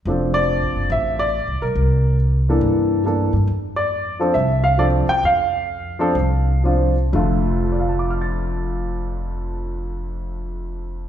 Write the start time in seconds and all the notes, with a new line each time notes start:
0.05 F1 F3 C4 D4 A4
0.34 D5
0.62 A1
0.76 F#1
0.90 A1 E5
1.19 D5
1.47 C2
1.62 B1 A#4
1.75 C2
2.49 E3 A#3 D4 A4
2.61 G2
3.05 E3 A#3 D4 A4
3.33 G2
3.47 F2
3.76 D5
4.20 F3 C4 D4 A4
4.34 C2 E5
4.64 F5
4.78 F3 C4 D4 A4 D5
5.08 G5, muted upright bass stroke
5.23 F2 F5
5.99 F3 C4 D4 A4
6.15 C2
6.64 F3 C4 D4 F4
7.13 F1 F2 D3 A3 F4
7.64 A4
7.72 D5
7.80 F5
7.89 A5
7.99 D6
8.10 F6
8.21 A6